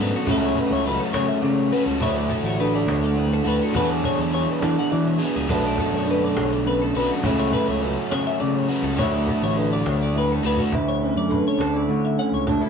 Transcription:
Already playing: clean electric guitar F#2 D3 A3 D4, overdriven electric guitar D4 F#4
0.00 fingered electric bass G#2, overdriven electric guitar B2 F#3 B3, clean electric guitar B4
0.16 clean electric guitar F#4
0.26 fingered electric bass C#2, overdriven electric guitar C#3 A3 C#4 F#4, clean electric guitar C#3 A3 C#4 E4, cajon bass
0.31 clean electric guitar A4
0.46 clean electric guitar C#5
0.56 clean electric guitar B4, cajon bass
0.71 fingered electric bass C#2, clean electric guitar C#5
0.84 clean electric guitar F#3 B4, cajon slap
1.00 clean electric guitar A4
1.13 fingered electric bass C#3, clean electric guitar C#4 C#5, cajon slap
1.28 clean electric guitar E5
1.42 clean electric guitar C#3 D5, fingered electric bass C#3, cajon slap
1.57 clean electric guitar C#5
1.72 overdriven electric guitar C#3 A3 C#4 F#4, clean electric guitar B4, cajon slap
1.86 fingered electric bass C#2, clean electric guitar A4
2.00 clean electric guitar D2 F#3 E4 C#5, fingered electric bass D2, overdriven electric guitar D3 A3 D4, cajon bass
2.04 overdriven electric guitar F#4
2.16 clean electric guitar D5
2.30 clean electric guitar A4, cajon bass
2.43 fingered electric bass A1, clean electric guitar C#5
2.59 clean electric guitar D3 B4, cajon slap
2.75 clean electric guitar D5
2.86 fingered electric bass D2, cajon slap
2.90 clean electric guitar C#5
3.04 clean electric guitar D5
3.15 clean electric guitar A2 B4, cajon slap
3.33 clean electric guitar A4
3.45 fingered electric bass D2, overdriven electric guitar D3 A3 D4 F#4, clean electric guitar B4, cajon slap
3.63 clean electric guitar F#4
3.73 fingered electric bass E2, clean electric guitar E2 F#3 D4 F#4 B4, overdriven electric guitar E3 B3 D4 G#4, cajon bass
3.90 clean electric guitar D5
4.04 clean electric guitar C#5, cajon bass
4.18 fingered electric bass E2, clean electric guitar D5
4.32 clean electric guitar E3 C#5, cajon slap
4.50 clean electric guitar B4
4.60 fingered electric bass E3, clean electric guitar D4 D5, cajon slap
4.79 clean electric guitar F#5
4.90 clean electric guitar B2 D5, fingered electric bass E3, cajon slap
5.08 clean electric guitar C#5
5.19 overdriven electric guitar E3 B3 D4 G#4, clean electric guitar B4, cajon slap
5.36 fingered electric bass C#2, clean electric guitar G#4
5.48 fingered electric bass B1, overdriven electric guitar B2 F#3 B3 D4 F#4, clean electric guitar B2 A3 D4 B4, cajon bass
5.65 clean electric guitar D5
5.78 clean electric guitar A4, cajon bass
5.92 fingered electric bass F#2, clean electric guitar C#5
6.06 clean electric guitar D3, cajon slap
6.11 clean electric guitar B4
6.24 clean electric guitar D5
6.36 fingered electric bass B1, clean electric guitar C#5, cajon slap
6.53 clean electric guitar D5
6.65 clean electric guitar F#2 B4, cajon slap
6.82 clean electric guitar A4
6.94 fingered electric bass B1, overdriven electric guitar B3 D4 F#4, clean electric guitar B4, cajon slap
6.98 overdriven electric guitar B2 F#3
7.11 clean electric guitar F#4
7.23 fingered electric bass C#2, overdriven electric guitar C#3 A3 C#4, clean electric guitar C#3 A3 C#4 E4 A4, cajon bass
7.27 overdriven electric guitar F#4
7.39 clean electric guitar C#5
7.52 clean electric guitar B4, cajon bass
7.67 fingered electric bass C#2, clean electric guitar C#5
7.82 clean electric guitar F#3 B4, cajon slap
7.97 clean electric guitar A4
8.10 fingered electric bass C#3, clean electric guitar C#4 C#5, cajon slap
8.27 clean electric guitar E5
8.40 clean electric guitar C#3 D5, fingered electric bass C#3, cajon slap
8.56 clean electric guitar C#5
8.69 overdriven electric guitar C#3 A3 C#4 F#4, clean electric guitar B4, cajon slap
8.82 fingered electric bass C#2, clean electric guitar A4
8.97 clean electric guitar D2 F#3 E4 C#5, fingered electric bass D2, overdriven electric guitar D3 A3 D4, cajon bass
9.01 overdriven electric guitar F#4
9.14 clean electric guitar D5
9.27 clean electric guitar A4, cajon bass
9.42 fingered electric bass A1, clean electric guitar C#5
9.56 clean electric guitar D3 B4, cajon slap
9.73 clean electric guitar D5
9.86 fingered electric bass D2, clean electric guitar C#5, cajon slap
10.03 clean electric guitar D5
10.13 clean electric guitar A2, cajon slap
10.18 clean electric guitar B4
10.32 clean electric guitar A4
10.43 fingered electric bass D2, overdriven electric guitar A3 D4 F#4, clean electric guitar B4, cajon slap
10.47 overdriven electric guitar D3
10.57 clean electric guitar F#4, cajon bass
10.72 clean electric guitar D2 E4 A4, fingered electric bass D2, cajon bass
10.89 clean electric guitar C#5
11.02 clean electric guitar C#4 A4, cajon slap
11.16 fingered electric bass F#2, clean electric guitar D5
11.28 clean electric guitar D3 B4, cajon bass
11.48 clean electric guitar C#5
11.58 fingered electric bass D2, clean electric guitar D4 A4, cajon slap
11.73 clean electric guitar E4 D5
11.87 clean electric guitar A2 C#5, fingered electric bass D3, cajon slap
12.05 clean electric guitar E5
12.18 clean electric guitar C#4 F#5, cajon slap
12.32 fingered electric bass C#2, clean electric guitar C#5
12.47 clean electric guitar D2 D4 E5, cajon bass
12.61 clean electric guitar E4 A4

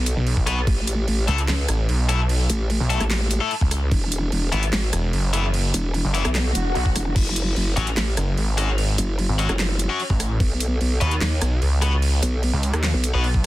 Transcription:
Already playing: wobble bass B1
0.06 closed hi-hat
0.17 detuned saw bass B1
0.27 crash
0.37 detuned saw bass B1, kick
0.47 distorted electric guitar B3 F#4 B4, cross-stick, open hi-hat
0.67 wobble bass A1, kick, crash
0.87 closed hi-hat
1.08 wobble bass A1, crash
1.28 detuned saw bass C#2, distorted electric guitar A3 E4 A4, open hi-hat
1.38 closed hi-hat
1.48 wobble bass C#2, snare, clap, crash
1.69 detuned saw bass A1, cross-stick, closed hi-hat
1.89 detuned saw bass B1, crash
2.09 distorted electric guitar A3 E4 A4, cross-stick, open hi-hat
2.29 crash
2.50 wobble bass A1, closed hi-hat
2.70 crash
2.80 detuned saw bass B1
2.90 distorted electric guitar A3 E4 A4, open hi-hat
3.00 wobble bass A1, cross-stick, closed hi-hat
3.10 snare, clap, crash
3.31 closed hi-hat
3.41 distorted electric guitar A3 E4 A4
3.51 crash
3.61 detuned saw bass C#2, kick
3.71 cross-stick, open hi-hat
3.92 wobble bass E1, kick, crash
4.12 closed hi-hat
4.32 wobble bass E1, crash
4.52 detuned saw bass G#1, distorted electric guitar E3 B3 E4, open hi-hat
4.63 closed hi-hat
4.73 wobble bass G#1, snare, clap, crash
4.93 detuned saw bass E1, cross-stick, closed hi-hat
5.13 detuned saw bass F#1, crash
5.33 distorted electric guitar E3 B3 E4, cross-stick, open hi-hat
5.54 crash
5.74 wobble bass E1, closed hi-hat
5.94 crash
6.05 detuned saw bass F#1
6.14 distorted electric guitar E3 B3 E4, open hi-hat
6.25 wobble bass B1, cross-stick, closed hi-hat
6.35 snare, clap, crash, swell
6.55 wobble bass E1, closed hi-hat
6.75 detuned saw bass B1, crash
6.86 kick
6.96 wobble bass E1, cross-stick, open hi-hat
7.16 wobble bass F#1, kick, crash
7.36 closed hi-hat
7.56 wobble bass F#1, crash
7.76 detuned saw bass A1, distorted electric guitar F#3 C#4 F#4, open hi-hat
7.87 closed hi-hat
7.97 wobble bass A1, snare, clap, crash
8.17 detuned saw bass F#1, cross-stick, closed hi-hat
8.37 detuned saw bass G#1, crash
8.58 distorted electric guitar F#3 C#4 F#4, cross-stick, open hi-hat
8.78 crash
8.98 wobble bass F#1, closed hi-hat
9.19 crash
9.29 detuned saw bass G#1
9.38 distorted electric guitar F#3 C#4 F#4, open hi-hat
9.49 wobble bass F#1, cross-stick, closed hi-hat
9.59 snare, clap, crash
9.79 closed hi-hat
9.89 distorted electric guitar F#3 C#4 F#4
10.00 crash
10.10 detuned saw bass A1, kick
10.20 cross-stick, open hi-hat
10.40 wobble bass B1, kick, crash
10.60 closed hi-hat
10.81 wobble bass B1, crash
11.01 detuned saw bass D#2, distorted electric guitar B3 F#4 B4, open hi-hat
11.11 closed hi-hat
11.21 wobble bass D#2, snare, clap, crash
11.42 detuned saw bass B1, cross-stick, closed hi-hat
11.62 detuned saw bass C#2, crash
11.82 distorted electric guitar B3 F#4 B4, cross-stick, open hi-hat
12.02 crash
12.23 wobble bass B1, closed hi-hat
12.43 crash
12.53 detuned saw bass C#2
12.63 open hi-hat
12.73 detuned saw bass D#2, cross-stick, closed hi-hat
12.83 snare, clap, crash
12.94 wobble bass B1
13.04 closed hi-hat
13.14 detuned saw bass B1, distorted electric guitar B3 F#4 B4
13.24 crash
13.34 detuned saw bass B1, kick

